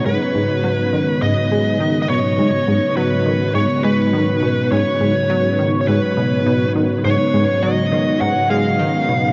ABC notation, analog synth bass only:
X:1
M:4/4
L:1/8
Q:1/4=103
K:G#m
V:1 name="Analog synth bass" clef=bass
G,, G,, F, D, G,, G, D, B,, | G,, G,, F, D, G,, G, D, B,, | G,, G,, F, D, G,, B,, B,, D, | G,, G,, F, D, G,, G, D, B,, |]